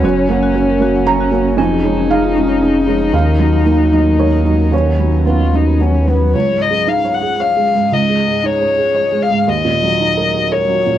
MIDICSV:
0, 0, Header, 1, 6, 480
1, 0, Start_track
1, 0, Tempo, 517241
1, 31, Time_signature, 3, 2, 24, 8
1, 3391, Tempo, 538117
1, 5791, Tempo, 519931
1, 10070, End_track
2, 0, Start_track
2, 0, Title_t, "Violin"
2, 0, Program_c, 0, 40
2, 0, Note_on_c, 0, 61, 65
2, 1467, Note_on_c, 0, 63, 55
2, 1481, Note_off_c, 0, 61, 0
2, 4351, Note_on_c, 0, 61, 38
2, 4364, Note_off_c, 0, 63, 0
2, 4785, Note_off_c, 0, 61, 0
2, 4834, Note_on_c, 0, 65, 47
2, 5084, Note_on_c, 0, 63, 39
2, 5097, Note_off_c, 0, 65, 0
2, 5318, Note_on_c, 0, 61, 42
2, 5331, Note_off_c, 0, 63, 0
2, 5565, Note_on_c, 0, 59, 36
2, 5579, Note_off_c, 0, 61, 0
2, 5794, Note_off_c, 0, 59, 0
2, 5800, Note_on_c, 0, 73, 52
2, 6045, Note_on_c, 0, 75, 58
2, 6058, Note_off_c, 0, 73, 0
2, 6288, Note_on_c, 0, 77, 53
2, 6302, Note_off_c, 0, 75, 0
2, 6528, Note_on_c, 0, 78, 60
2, 6542, Note_off_c, 0, 77, 0
2, 6771, Note_on_c, 0, 77, 66
2, 6784, Note_off_c, 0, 78, 0
2, 7256, Note_on_c, 0, 75, 52
2, 7270, Note_off_c, 0, 77, 0
2, 7739, Note_on_c, 0, 73, 63
2, 7753, Note_off_c, 0, 75, 0
2, 8447, Note_on_c, 0, 77, 63
2, 8461, Note_off_c, 0, 73, 0
2, 8691, Note_on_c, 0, 75, 66
2, 8705, Note_off_c, 0, 77, 0
2, 9640, Note_on_c, 0, 73, 65
2, 9654, Note_off_c, 0, 75, 0
2, 10070, Note_off_c, 0, 73, 0
2, 10070, End_track
3, 0, Start_track
3, 0, Title_t, "Marimba"
3, 0, Program_c, 1, 12
3, 45, Note_on_c, 1, 66, 75
3, 113, Note_off_c, 1, 66, 0
3, 163, Note_on_c, 1, 73, 55
3, 230, Note_off_c, 1, 73, 0
3, 285, Note_on_c, 1, 78, 51
3, 351, Note_off_c, 1, 78, 0
3, 398, Note_on_c, 1, 66, 74
3, 466, Note_off_c, 1, 66, 0
3, 518, Note_on_c, 1, 73, 56
3, 586, Note_off_c, 1, 73, 0
3, 644, Note_on_c, 1, 70, 52
3, 710, Note_off_c, 1, 70, 0
3, 762, Note_on_c, 1, 66, 75
3, 828, Note_off_c, 1, 66, 0
3, 883, Note_on_c, 1, 78, 56
3, 949, Note_off_c, 1, 78, 0
3, 998, Note_on_c, 1, 73, 54
3, 1066, Note_off_c, 1, 73, 0
3, 1117, Note_on_c, 1, 66, 68
3, 1186, Note_off_c, 1, 66, 0
3, 1232, Note_on_c, 1, 78, 49
3, 1302, Note_off_c, 1, 78, 0
3, 1467, Note_on_c, 1, 61, 74
3, 1538, Note_off_c, 1, 61, 0
3, 1583, Note_on_c, 1, 68, 49
3, 1656, Note_off_c, 1, 68, 0
3, 1706, Note_on_c, 1, 73, 53
3, 1778, Note_off_c, 1, 73, 0
3, 1829, Note_on_c, 1, 61, 62
3, 1901, Note_off_c, 1, 61, 0
3, 1948, Note_on_c, 1, 68, 50
3, 2020, Note_off_c, 1, 68, 0
3, 2066, Note_on_c, 1, 65, 49
3, 2138, Note_off_c, 1, 65, 0
3, 2188, Note_on_c, 1, 61, 71
3, 2259, Note_off_c, 1, 61, 0
3, 2307, Note_on_c, 1, 73, 49
3, 2379, Note_off_c, 1, 73, 0
3, 2419, Note_on_c, 1, 68, 45
3, 2493, Note_off_c, 1, 68, 0
3, 2539, Note_on_c, 1, 61, 57
3, 2613, Note_off_c, 1, 61, 0
3, 2659, Note_on_c, 1, 73, 46
3, 2732, Note_off_c, 1, 73, 0
3, 2897, Note_on_c, 1, 63, 65
3, 2972, Note_off_c, 1, 63, 0
3, 3024, Note_on_c, 1, 70, 42
3, 3097, Note_off_c, 1, 70, 0
3, 3145, Note_on_c, 1, 75, 41
3, 3218, Note_off_c, 1, 75, 0
3, 3275, Note_on_c, 1, 63, 56
3, 3346, Note_off_c, 1, 63, 0
3, 3390, Note_on_c, 1, 70, 43
3, 3461, Note_off_c, 1, 70, 0
3, 3507, Note_on_c, 1, 66, 39
3, 3578, Note_off_c, 1, 66, 0
3, 3628, Note_on_c, 1, 63, 50
3, 3698, Note_off_c, 1, 63, 0
3, 3753, Note_on_c, 1, 75, 38
3, 3822, Note_off_c, 1, 75, 0
3, 3866, Note_on_c, 1, 70, 36
3, 3937, Note_off_c, 1, 70, 0
3, 3987, Note_on_c, 1, 63, 48
3, 4058, Note_off_c, 1, 63, 0
3, 4104, Note_on_c, 1, 75, 34
3, 4176, Note_off_c, 1, 75, 0
3, 4347, Note_on_c, 1, 71, 45
3, 4419, Note_off_c, 1, 71, 0
3, 4469, Note_on_c, 1, 78, 33
3, 4541, Note_off_c, 1, 78, 0
3, 4589, Note_on_c, 1, 83, 32
3, 4661, Note_off_c, 1, 83, 0
3, 4709, Note_on_c, 1, 71, 42
3, 4781, Note_off_c, 1, 71, 0
3, 4830, Note_on_c, 1, 78, 32
3, 4902, Note_off_c, 1, 78, 0
3, 4947, Note_on_c, 1, 75, 32
3, 5020, Note_off_c, 1, 75, 0
3, 5069, Note_on_c, 1, 71, 42
3, 5141, Note_off_c, 1, 71, 0
3, 5187, Note_on_c, 1, 83, 33
3, 5260, Note_off_c, 1, 83, 0
3, 5309, Note_on_c, 1, 78, 33
3, 5382, Note_off_c, 1, 78, 0
3, 5436, Note_on_c, 1, 71, 43
3, 5507, Note_off_c, 1, 71, 0
3, 5557, Note_on_c, 1, 83, 33
3, 5628, Note_off_c, 1, 83, 0
3, 10070, End_track
4, 0, Start_track
4, 0, Title_t, "Ambient pad"
4, 0, Program_c, 2, 92
4, 0, Note_on_c, 2, 54, 57
4, 0, Note_on_c, 2, 61, 60
4, 27, Note_on_c, 2, 70, 60
4, 1458, Note_off_c, 2, 61, 0
4, 1458, Note_on_c, 2, 53, 64
4, 1459, Note_on_c, 2, 73, 57
4, 1460, Note_on_c, 2, 63, 59
4, 1463, Note_off_c, 2, 70, 0
4, 1466, Note_off_c, 2, 54, 0
4, 2891, Note_on_c, 2, 70, 56
4, 2895, Note_on_c, 2, 54, 56
4, 2901, Note_off_c, 2, 53, 0
4, 2902, Note_off_c, 2, 73, 0
4, 4334, Note_on_c, 2, 71, 53
4, 4337, Note_on_c, 2, 61, 55
4, 4338, Note_off_c, 2, 70, 0
4, 4342, Note_off_c, 2, 63, 0
4, 5786, Note_off_c, 2, 54, 0
4, 5786, Note_off_c, 2, 71, 0
4, 5787, Note_off_c, 2, 61, 0
4, 5787, Note_on_c, 2, 68, 54
4, 5788, Note_on_c, 2, 75, 52
4, 5790, Note_on_c, 2, 56, 53
4, 8643, Note_off_c, 2, 68, 0
4, 8644, Note_off_c, 2, 56, 0
4, 8680, Note_on_c, 2, 58, 56
4, 8683, Note_on_c, 2, 66, 53
4, 10070, Note_off_c, 2, 58, 0
4, 10070, Note_off_c, 2, 66, 0
4, 10070, Note_off_c, 2, 75, 0
4, 10070, End_track
5, 0, Start_track
5, 0, Title_t, "Felt piano"
5, 0, Program_c, 3, 0
5, 0, Control_c, 3, 64, 127
5, 28, Note_on_c, 3, 42, 61
5, 36, Note_on_c, 3, 73, 76
5, 48, Control_c, 3, 64, 0
5, 224, Control_c, 3, 64, 127
5, 270, Note_on_c, 3, 58, 50
5, 272, Note_on_c, 3, 66, 49
5, 483, Note_off_c, 3, 58, 0
5, 484, Note_off_c, 3, 66, 0
5, 504, Note_on_c, 3, 61, 44
5, 510, Note_on_c, 3, 66, 50
5, 720, Note_off_c, 3, 61, 0
5, 723, Note_off_c, 3, 66, 0
5, 740, Note_on_c, 3, 58, 47
5, 747, Note_on_c, 3, 66, 46
5, 949, Note_off_c, 3, 73, 0
5, 957, Note_off_c, 3, 58, 0
5, 961, Note_off_c, 3, 66, 0
5, 982, Note_on_c, 3, 61, 46
5, 987, Note_on_c, 3, 66, 53
5, 990, Note_on_c, 3, 82, 85
5, 1199, Note_off_c, 3, 61, 0
5, 1202, Note_off_c, 3, 66, 0
5, 1223, Note_on_c, 3, 66, 49
5, 1224, Note_on_c, 3, 58, 45
5, 1426, Note_off_c, 3, 42, 0
5, 1434, Note_off_c, 3, 82, 0
5, 1440, Note_off_c, 3, 66, 0
5, 1441, Note_off_c, 3, 58, 0
5, 1458, Note_on_c, 3, 41, 56
5, 1468, Note_on_c, 3, 80, 73
5, 1481, Control_c, 3, 64, 0
5, 1630, Control_c, 3, 64, 127
5, 1707, Note_on_c, 3, 56, 42
5, 1710, Note_on_c, 3, 63, 46
5, 1914, Note_off_c, 3, 80, 0
5, 1923, Note_off_c, 3, 56, 0
5, 1925, Note_off_c, 3, 63, 0
5, 1946, Note_on_c, 3, 61, 44
5, 1953, Note_on_c, 3, 63, 47
5, 1955, Note_on_c, 3, 77, 81
5, 2163, Note_off_c, 3, 61, 0
5, 2167, Note_off_c, 3, 63, 0
5, 2186, Note_on_c, 3, 56, 42
5, 2189, Note_on_c, 3, 63, 45
5, 2402, Note_off_c, 3, 56, 0
5, 2404, Note_off_c, 3, 63, 0
5, 2432, Note_on_c, 3, 61, 41
5, 2436, Note_on_c, 3, 63, 43
5, 2644, Note_off_c, 3, 61, 0
5, 2646, Note_off_c, 3, 63, 0
5, 2667, Note_on_c, 3, 56, 41
5, 2669, Note_on_c, 3, 63, 45
5, 2864, Note_off_c, 3, 41, 0
5, 2872, Note_off_c, 3, 77, 0
5, 2881, Note_off_c, 3, 56, 0
5, 2883, Note_off_c, 3, 63, 0
5, 2904, Note_on_c, 3, 39, 49
5, 2913, Note_on_c, 3, 77, 64
5, 2924, Control_c, 3, 64, 0
5, 3084, Control_c, 3, 64, 127
5, 3148, Note_on_c, 3, 54, 35
5, 3151, Note_on_c, 3, 63, 42
5, 3366, Note_off_c, 3, 54, 0
5, 3368, Note_off_c, 3, 63, 0
5, 3392, Note_on_c, 3, 58, 36
5, 3395, Note_on_c, 3, 63, 38
5, 3593, Note_off_c, 3, 77, 0
5, 3603, Note_off_c, 3, 58, 0
5, 3605, Note_off_c, 3, 63, 0
5, 3627, Note_on_c, 3, 54, 34
5, 3631, Note_on_c, 3, 63, 35
5, 3637, Note_on_c, 3, 75, 48
5, 3841, Note_off_c, 3, 54, 0
5, 3842, Note_off_c, 3, 63, 0
5, 3853, Note_off_c, 3, 75, 0
5, 3863, Note_on_c, 3, 58, 31
5, 3869, Note_on_c, 3, 63, 35
5, 3873, Note_on_c, 3, 73, 56
5, 4079, Note_off_c, 3, 58, 0
5, 4082, Note_off_c, 3, 63, 0
5, 4102, Note_on_c, 3, 54, 30
5, 4102, Note_on_c, 3, 63, 35
5, 4308, Note_off_c, 3, 39, 0
5, 4316, Note_off_c, 3, 73, 0
5, 4320, Note_off_c, 3, 54, 0
5, 4320, Note_off_c, 3, 63, 0
5, 4339, Note_on_c, 3, 39, 39
5, 4358, Note_on_c, 3, 73, 50
5, 4363, Control_c, 3, 64, 0
5, 4489, Control_c, 3, 64, 127
5, 4584, Note_on_c, 3, 54, 28
5, 4587, Note_on_c, 3, 61, 31
5, 4803, Note_off_c, 3, 54, 0
5, 4803, Note_off_c, 3, 73, 0
5, 4805, Note_off_c, 3, 61, 0
5, 4823, Note_on_c, 3, 59, 28
5, 4827, Note_on_c, 3, 61, 30
5, 4830, Note_on_c, 3, 71, 37
5, 5042, Note_off_c, 3, 59, 0
5, 5045, Note_off_c, 3, 61, 0
5, 5066, Note_on_c, 3, 54, 28
5, 5067, Note_on_c, 3, 61, 28
5, 5277, Note_off_c, 3, 71, 0
5, 5284, Note_off_c, 3, 54, 0
5, 5285, Note_off_c, 3, 61, 0
5, 5310, Note_on_c, 3, 59, 28
5, 5314, Note_on_c, 3, 61, 30
5, 5528, Note_off_c, 3, 59, 0
5, 5530, Note_off_c, 3, 61, 0
5, 5547, Note_on_c, 3, 54, 26
5, 5553, Note_on_c, 3, 61, 27
5, 5752, Note_off_c, 3, 39, 0
5, 5764, Note_off_c, 3, 54, 0
5, 5767, Note_off_c, 3, 61, 0
5, 5796, Note_on_c, 3, 37, 43
5, 5808, Control_c, 3, 64, 0
5, 5960, Note_on_c, 3, 44, 31
5, 5968, Control_c, 3, 64, 127
5, 6121, Note_on_c, 3, 56, 35
5, 6214, Note_off_c, 3, 44, 0
5, 6277, Note_on_c, 3, 63, 39
5, 6376, Note_off_c, 3, 56, 0
5, 6439, Note_on_c, 3, 73, 37
5, 6535, Note_off_c, 3, 63, 0
5, 6594, Note_on_c, 3, 68, 38
5, 6696, Note_off_c, 3, 73, 0
5, 6764, Note_on_c, 3, 73, 38
5, 6854, Note_off_c, 3, 68, 0
5, 6919, Note_on_c, 3, 56, 35
5, 7019, Note_off_c, 3, 73, 0
5, 7083, Note_on_c, 3, 44, 34
5, 7177, Note_off_c, 3, 56, 0
5, 7208, Note_off_c, 3, 37, 0
5, 7243, Note_on_c, 3, 37, 48
5, 7261, Control_c, 3, 64, 0
5, 7340, Note_off_c, 3, 44, 0
5, 7404, Note_on_c, 3, 56, 35
5, 7427, Control_c, 3, 64, 127
5, 7565, Note_on_c, 3, 44, 36
5, 7660, Note_off_c, 3, 56, 0
5, 7719, Note_on_c, 3, 63, 37
5, 7821, Note_off_c, 3, 44, 0
5, 7883, Note_on_c, 3, 73, 35
5, 7977, Note_off_c, 3, 63, 0
5, 8036, Note_on_c, 3, 68, 37
5, 8139, Note_off_c, 3, 73, 0
5, 8192, Note_on_c, 3, 73, 38
5, 8295, Note_off_c, 3, 68, 0
5, 8352, Note_on_c, 3, 56, 35
5, 8453, Note_off_c, 3, 73, 0
5, 8521, Note_on_c, 3, 44, 39
5, 8613, Note_off_c, 3, 56, 0
5, 8645, Note_off_c, 3, 37, 0
5, 8680, Note_on_c, 3, 39, 45
5, 8681, Note_off_c, 3, 44, 0
5, 8699, Control_c, 3, 64, 0
5, 8824, Control_c, 3, 64, 127
5, 8839, Note_on_c, 3, 46, 35
5, 9005, Note_on_c, 3, 54, 38
5, 9095, Note_off_c, 3, 46, 0
5, 9165, Note_on_c, 3, 63, 39
5, 9257, Note_off_c, 3, 54, 0
5, 9325, Note_on_c, 3, 70, 39
5, 9416, Note_off_c, 3, 63, 0
5, 9486, Note_on_c, 3, 66, 37
5, 9575, Note_off_c, 3, 70, 0
5, 9642, Note_on_c, 3, 70, 43
5, 9734, Note_off_c, 3, 66, 0
5, 9795, Note_on_c, 3, 54, 43
5, 9892, Note_off_c, 3, 70, 0
5, 9962, Note_on_c, 3, 46, 39
5, 10047, Note_off_c, 3, 54, 0
5, 10070, Note_off_c, 3, 39, 0
5, 10070, Note_off_c, 3, 46, 0
5, 10070, End_track
6, 0, Start_track
6, 0, Title_t, "Sub bass"
6, 0, Program_c, 4, 38
6, 36, Note_on_c, 4, 30, 62
6, 1470, Note_on_c, 4, 29, 59
6, 1484, Note_off_c, 4, 30, 0
6, 2905, Note_on_c, 4, 39, 54
6, 2919, Note_off_c, 4, 29, 0
6, 5791, Note_off_c, 4, 39, 0
6, 10070, End_track
0, 0, End_of_file